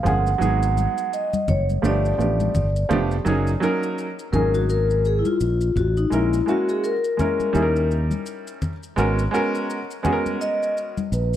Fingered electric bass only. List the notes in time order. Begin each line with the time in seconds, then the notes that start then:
0.05 G1
0.41 G#1
1.48 F#1
1.83 G1
2.19 A1
2.55 G1
2.90 F1
3.26 F#1
4.33 G#1
5.41 A#1
5.76 A1
6.12 A#1
7.55 D#2
8.98 G#1
11.12 A#1